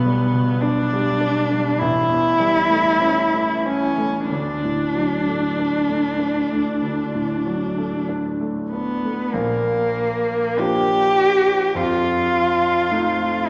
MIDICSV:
0, 0, Header, 1, 3, 480
1, 0, Start_track
1, 0, Key_signature, 2, "major"
1, 0, Tempo, 1195219
1, 1212, Tempo, 1271186
1, 1693, Time_signature, 4, 2, 24, 8
1, 2172, Tempo, 1252610
1, 3614, Key_signature, -2, "major"
1, 4092, Tempo, 1158301
1, 5303, End_track
2, 0, Start_track
2, 0, Title_t, "Cello"
2, 0, Program_c, 0, 42
2, 0, Note_on_c, 0, 59, 57
2, 247, Note_on_c, 0, 62, 65
2, 253, Note_off_c, 0, 59, 0
2, 717, Note_on_c, 0, 64, 61
2, 723, Note_off_c, 0, 62, 0
2, 1450, Note_on_c, 0, 61, 50
2, 1455, Note_off_c, 0, 64, 0
2, 1693, Note_off_c, 0, 61, 0
2, 1699, Note_on_c, 0, 62, 51
2, 3124, Note_off_c, 0, 62, 0
2, 3381, Note_on_c, 0, 59, 44
2, 3616, Note_on_c, 0, 58, 53
2, 3621, Note_off_c, 0, 59, 0
2, 4100, Note_on_c, 0, 67, 72
2, 4107, Note_off_c, 0, 58, 0
2, 4585, Note_on_c, 0, 65, 55
2, 4592, Note_off_c, 0, 67, 0
2, 5302, Note_off_c, 0, 65, 0
2, 5303, End_track
3, 0, Start_track
3, 0, Title_t, "Grand piano"
3, 0, Program_c, 1, 0
3, 0, Control_c, 1, 64, 127
3, 0, Note_on_c, 1, 35, 40
3, 0, Note_on_c, 1, 47, 31
3, 23, Note_on_c, 1, 55, 29
3, 86, Note_off_c, 1, 47, 0
3, 137, Note_on_c, 1, 47, 30
3, 205, Note_off_c, 1, 55, 0
3, 250, Note_on_c, 1, 62, 34
3, 321, Note_off_c, 1, 47, 0
3, 375, Note_on_c, 1, 55, 32
3, 438, Note_off_c, 1, 62, 0
3, 486, Note_on_c, 1, 62, 34
3, 560, Note_off_c, 1, 55, 0
3, 607, Note_on_c, 1, 55, 29
3, 676, Note_off_c, 1, 62, 0
3, 709, Note_off_c, 1, 35, 0
3, 724, Note_off_c, 1, 55, 0
3, 726, Note_on_c, 1, 33, 42
3, 728, Control_c, 1, 64, 0
3, 795, Control_c, 1, 64, 127
3, 840, Note_on_c, 1, 40, 29
3, 962, Note_on_c, 1, 55, 32
3, 1037, Note_off_c, 1, 40, 0
3, 1082, Note_on_c, 1, 57, 30
3, 1161, Note_off_c, 1, 55, 0
3, 1209, Note_on_c, 1, 61, 29
3, 1280, Note_off_c, 1, 57, 0
3, 1332, Note_on_c, 1, 57, 26
3, 1401, Note_off_c, 1, 61, 0
3, 1452, Note_on_c, 1, 61, 27
3, 1523, Note_off_c, 1, 57, 0
3, 1574, Note_on_c, 1, 57, 24
3, 1645, Note_off_c, 1, 61, 0
3, 1680, Note_off_c, 1, 33, 0
3, 1694, Note_off_c, 1, 57, 0
3, 1697, Note_on_c, 1, 38, 33
3, 1700, Control_c, 1, 64, 0
3, 1777, Control_c, 1, 64, 127
3, 1824, Note_on_c, 1, 45, 25
3, 1942, Note_on_c, 1, 54, 22
3, 2012, Note_off_c, 1, 45, 0
3, 2063, Note_on_c, 1, 57, 23
3, 2129, Note_off_c, 1, 54, 0
3, 2184, Note_on_c, 1, 62, 26
3, 2249, Note_off_c, 1, 57, 0
3, 2297, Note_on_c, 1, 57, 24
3, 2370, Note_off_c, 1, 62, 0
3, 2415, Note_on_c, 1, 62, 23
3, 2487, Note_off_c, 1, 57, 0
3, 2539, Note_on_c, 1, 57, 23
3, 2607, Note_off_c, 1, 62, 0
3, 2641, Note_off_c, 1, 38, 0
3, 2654, Note_on_c, 1, 38, 26
3, 2730, Note_off_c, 1, 57, 0
3, 2778, Note_on_c, 1, 45, 23
3, 2900, Note_on_c, 1, 54, 26
3, 2970, Note_off_c, 1, 45, 0
3, 3022, Note_on_c, 1, 57, 26
3, 3091, Note_off_c, 1, 54, 0
3, 3142, Note_on_c, 1, 62, 22
3, 3212, Note_off_c, 1, 57, 0
3, 3263, Note_on_c, 1, 57, 21
3, 3332, Note_off_c, 1, 62, 0
3, 3386, Note_on_c, 1, 62, 23
3, 3454, Note_off_c, 1, 57, 0
3, 3507, Note_on_c, 1, 57, 20
3, 3572, Note_off_c, 1, 62, 0
3, 3599, Note_off_c, 1, 38, 0
3, 3618, Note_off_c, 1, 57, 0
3, 3619, Control_c, 1, 64, 0
3, 3619, Note_on_c, 1, 34, 41
3, 3683, Control_c, 1, 64, 127
3, 4082, Note_off_c, 1, 34, 0
3, 4097, Note_on_c, 1, 53, 33
3, 4100, Note_on_c, 1, 58, 29
3, 4102, Note_on_c, 1, 62, 33
3, 4564, Note_off_c, 1, 53, 0
3, 4566, Note_off_c, 1, 58, 0
3, 4567, Note_off_c, 1, 62, 0
3, 4580, Note_on_c, 1, 41, 43
3, 4586, Control_c, 1, 64, 0
3, 4643, Control_c, 1, 64, 127
3, 5042, Note_off_c, 1, 41, 0
3, 5059, Note_on_c, 1, 53, 32
3, 5062, Note_on_c, 1, 57, 29
3, 5062, Note_on_c, 1, 63, 31
3, 5303, Note_off_c, 1, 53, 0
3, 5303, Note_off_c, 1, 57, 0
3, 5303, Note_off_c, 1, 63, 0
3, 5303, End_track
0, 0, End_of_file